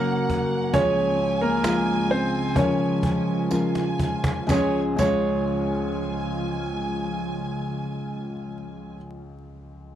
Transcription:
0.00 0.70 F#1 medium
0.00 0.70 F#2 medium
0.00 0.74 F#2 medium
0.00 0.73 C#3 medium
0.00 4.45 C#3 medium
0.00 0.71 F#3 medium
0.00 0.76 F#3 medium
0.00 0.70 A#3 medium
0.00 0.71 A#3 medium
0.00 0.76 A#3 medium
0.00 0.83 A#3 medium
0.00 0.73 C#4 medium
0.00 1.18 C#4 medium
0.00 0.70 F#4 medium
0.00 0.76 F#4 medium
0.00 0.82 F#4 medium
0.00 0.70 A#4 medium
0.00 0.76 A#4 medium
0.00 0.74 F#5 loud
0.29 cajon bass medium
0.73 4.45 C#2 medium
0.73 4.45 C#3 medium
0.73 4.45 F3 medium
0.73 1.59 F3 medium
0.73 1.59 G#3 medium
0.73 4.45 G#3 medium
0.73 1.59 C#4 medium
0.73 1.38 C#4 medium
0.73 4.45 F4 medium
0.73 1.59 F4 medium
0.73 1.59 G#4 medium
0.73 1.43 C#5 loud
0.73 3.50 G#5 loud
0.73 cajon bass loud
1.18 3.03 C#4 medium
1.18 cajon slap soft
1.41 2.06 A#3 medium
1.41 2.12 A#4 medium
1.63 2.51 F3 medium
1.63 2.51 G#3 medium
1.63 2.56 G#3 medium
1.63 2.51 F4 medium
1.63 3.51 F4 medium
1.63 2.51 G#4 medium
1.63 cajon slap loud
1.63 tambourine medium
2.09 2.54 C4 medium
2.09 2.58 C5 medium
2.09 cajon slap soft
2.55 3.46 F3 medium
2.55 3.46 G#3 medium
2.55 4.51 G#3 medium
2.55 3.46 C#4 medium
2.55 3.96 C#4 medium
2.55 3.46 F4 medium
2.55 3.46 A#4 medium
2.55 3.96 C#5 medium
2.55 cajon bass medium
3.03 4.53 C#4 medium
3.03 cajon bass medium
3.50 4.44 F3 medium
3.50 4.44 G#3 medium
3.50 4.44 C#4 medium
3.50 4.44 F4 medium
3.50 4.55 F4 medium
3.50 4.44 A#4 medium
3.50 4.45 G#5 medium
3.50 cajon slap medium
3.50 tambourine medium
3.75 cajon slap medium
3.99 cajon bass medium
4.24 cajon bass loud
4.47 4.77 C#2 medium
4.47 4.96 C#3 medium
4.47 8.44 C#3 medium
4.47 8.44 F3 medium
4.47 4.99 F3 medium
4.47 4.76 G#3 medium
4.47 8.44 G#3 medium
4.47 4.76 C#4 medium
4.47 8.44 F4 medium
4.47 4.77 F4 medium
4.47 4.77 C#5 medium
4.47 4.77 G#5 medium
4.47 cajon bass loud
4.47 cajon slap medium
4.47 tambourine medium
4.51 5.01 G#3 medium
4.51 5.03 C#4 medium
4.51 4.78 G#4 medium
4.56 5.05 F4 medium
4.96 8.94 C#2 medium
4.96 8.96 C#3 medium
4.96 8.99 F3 medium
4.96 8.92 G#3 medium
4.96 8.93 C#4 medium
4.96 8.95 F4 medium
4.96 8.96 G#4 medium
4.96 8.95 C#5 medium
4.96 8.94 G#5 medium
4.96 cajon bass medium
4.96 tambourine medium
5.01 9.01 G#3 medium
5.01 9.03 C#4 medium
5.01 9.05 F4 medium

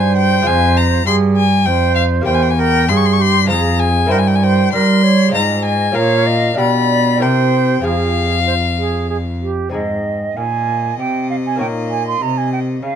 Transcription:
0.00 0.43 G2 medium
0.00 0.46 G2 medium
0.00 0.41 G#3 medium
0.00 0.42 D#4 medium
0.00 0.42 C5 medium
0.00 1.04 C5 medium
0.00 0.16 G#5 medium
0.17 0.48 G5 loud
0.42 1.02 G#3 medium
0.42 2.20 F4 medium
0.42 2.21 C5 medium
0.46 1.02 F2 medium
0.46 1.05 F2 medium
0.46 0.78 G#5 loud
0.77 1.06 A#5 loud
1.06 1.62 G2 medium
1.06 1.67 G2 medium
1.06 1.44 G#4 medium
1.06 1.15 C6 loud
1.36 1.67 G#5 loud
1.65 2.22 F2 medium
1.65 2.25 F2 medium
1.65 2.23 C5 medium
1.65 1.95 G5 loud
1.95 2.03 F5 loud
2.21 3.44 A#3 medium
2.21 3.44 G4 medium
2.21 3.45 C5 medium
2.25 2.84 E2 medium
2.25 2.90 E2 medium
2.25 2.57 C5 medium
2.25 2.35 G5 loud
2.34 2.44 G#5 medium
2.42 2.52 G5 medium
2.50 2.61 G#5 medium
2.58 2.88 A#4 medium
2.58 2.90 G5 loud
2.88 3.46 G2 medium
2.88 3.51 G2 medium
2.88 3.21 G#4 medium
2.88 2.98 C6 loud
2.96 3.07 C#6 loud
3.05 3.14 C6 medium
3.12 3.22 C#6 loud
3.19 3.48 G4 medium
3.19 3.49 C6 loud
3.45 4.06 G#3 medium
3.45 4.07 F4 medium
3.45 4.09 G#4 medium
3.45 4.08 C5 medium
3.49 4.10 F2 medium
3.49 4.07 F2 medium
3.49 3.81 A#5 medium
3.79 4.12 G#5 loud
4.06 5.29 A#3 medium
4.06 5.30 E4 medium
4.06 5.30 C5 medium
4.11 4.69 G2 medium
4.11 4.72 G2 medium
4.11 4.18 A#4 medium
4.11 4.19 G5 medium
4.18 4.29 G#5 medium
4.27 4.37 G5 medium
4.35 4.45 G#5 medium
4.41 4.72 C5 medium
4.41 4.73 G5 loud
4.73 5.28 G3 medium
4.73 5.34 G3 medium
4.73 5.05 A#4 medium
4.73 5.33 C6 loud
5.03 5.36 C#5 medium
5.29 5.91 G#3 medium
5.29 5.91 C4 medium
5.29 5.92 F4 medium
5.33 5.94 G#2 medium
5.33 5.92 G#2 medium
5.33 5.93 C5 medium
5.33 5.95 D#5 medium
5.33 5.64 A#5 loud
5.65 5.97 G#5 loud
5.92 6.54 C#4 medium
5.92 6.54 F4 medium
5.92 6.56 A#4 medium
5.92 6.28 C#5 medium
5.92 6.59 F5 loud
5.96 6.55 A#2 medium
6.27 6.61 D#5 medium
6.54 7.17 D4 medium
6.54 7.18 F4 medium
6.54 7.19 G4 medium
6.59 7.17 B2 medium
6.59 7.23 B2 medium
6.59 7.23 D5 medium
6.59 7.23 B5 loud
7.17 7.79 C4 medium
7.17 7.81 E4 soft
7.17 7.82 A#4 medium
7.21 7.80 C3 medium
7.21 7.84 C3 medium
7.21 7.83 C5 medium
7.21 7.85 G5 medium
7.80 9.68 C4 medium
7.80 9.68 F4 medium
7.80 9.69 G#4 medium
7.80 8.39 G#4 medium
7.80 9.42 F5 loud
7.84 9.49 F2 medium
7.84 9.50 F2 medium
8.47 8.54 C5 medium
8.78 9.09 G#4 medium
9.10 9.17 G#4 medium
9.42 9.73 G4 medium
9.69 10.33 G#2 medium
9.69 11.55 C4 soft
9.69 11.55 D#4 soft
9.69 11.56 G#4 soft
9.69 10.38 D#5 medium
9.74 10.34 G#2 soft
10.37 10.95 A#2 soft
10.37 10.98 A#2 medium
10.37 12.96 D#5 medium
10.37 10.99 G#5 medium
10.99 11.56 C3 soft
10.99 11.62 C3 medium
10.99 11.29 G5 medium
11.30 11.36 F5 medium
11.46 11.59 G#5 medium
11.56 12.96 A#3 soft
11.56 12.96 D#4 soft
11.56 12.96 C#5 soft
11.60 12.18 A#2 soft
11.60 12.21 A#2 medium
11.60 11.67 G5 medium
11.90 12.06 G#5 medium
12.07 12.24 C6 medium
12.21 12.79 C3 soft
12.21 12.82 C3 medium
12.21 12.39 A#5 medium
12.38 12.52 G#5 medium
12.53 12.60 G5 medium
12.82 12.96 C#3 soft
12.82 12.96 C#3 medium
12.82 12.96 F5 medium

